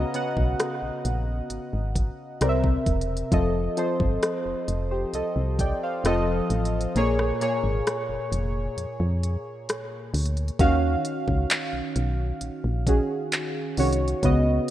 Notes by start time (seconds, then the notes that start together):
Already playing: C#3 B3 F#4 D#5 F5 A#5
0.14 C#3 B3 F#4 F#5, closed hi-hat
0.37 B1, kick
0.60 cross-stick, closed hi-hat
0.82 A#1
1.05 A#1, closed hi-hat
1.50 G#1, closed hi-hat
1.73 G#1
1.96 kick, closed hi-hat
2.41 C2 C3 C4 A#4 D5, cross-stick, closed hi-hat
2.49 E5
2.64 kick
2.86 E1, kick, closed hi-hat
3.01 closed hi-hat
3.17 closed hi-hat
3.32 F1 F3 C4 A4 D#5, kick, closed hi-hat
3.77 F3 C4 A4 C5, closed hi-hat
4.00 G1, kick
4.23 cross-stick, closed hi-hat
4.46 F1
4.68 F1, closed hi-hat
4.91 G4 C5
5.13 C2 A4 D#5, closed hi-hat
5.36 C2
5.59 D5 G5, kick, closed hi-hat
5.83 C5 F5
6.04 F1 F3 C4 A4 D#5, cross-stick, closed hi-hat
6.50 A1, closed hi-hat
6.65 closed hi-hat
6.81 closed hi-hat
6.96 A#1 A#2 A#3 G#4 C#5, closed hi-hat
7.19 cross-stick
7.41 A#2 A#3 G#4 C#5, closed hi-hat
7.64 G#1
7.87 cross-stick, closed hi-hat
8.09 F1
8.32 F1, closed hi-hat
8.77 F2, closed hi-hat
9.00 F2
9.23 closed hi-hat
9.69 cross-stick, closed hi-hat
10.14 D2, closed hi-hat, open hi-hat
10.26 closed hi-hat
10.37 closed hi-hat
10.48 closed hi-hat
10.59 D#2 D#3 C#4 F#4 F5, kick, closed hi-hat
11.05 closed hi-hat
11.28 C#2, kick
11.50 clap, closed hi-hat
11.73 B1
11.96 B1, closed hi-hat
12.41 A#1, closed hi-hat
12.64 A#1
12.87 D#3 C#4 F#4 G#4, kick, closed hi-hat
13.32 clap, closed hi-hat
13.77 C2 D#3 C#4 F#4 C#5, closed hi-hat, open hi-hat
13.93 closed hi-hat
14.08 closed hi-hat
14.23 C#2 C#3 B3 F#4 D#5, kick, closed hi-hat